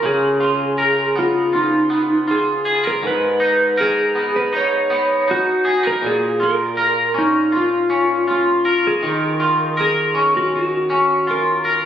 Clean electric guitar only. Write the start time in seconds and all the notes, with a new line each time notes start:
Already playing: C#4 F4 A#4
0.03 C#3
0.40 F4
0.78 A#4
1.16 B3
1.53 F4
1.90 B3
2.28 F4
2.65 G#4
2.84 A#4
3.03 G#2
3.40 D#4
3.77 A#4
4.15 B3
4.53 D#4
4.90 B3
5.28 D#4
5.65 G#4
5.83 A#4
6.02 A#2
6.40 F4
6.77 A#4
7.14 C#4
7.52 F4
7.90 C#4
8.27 F4
8.65 A#4
9.02 D#3
9.40 F4
9.77 A#4
10.15 C#4
10.90 C#4
11.27 F4
11.65 A#4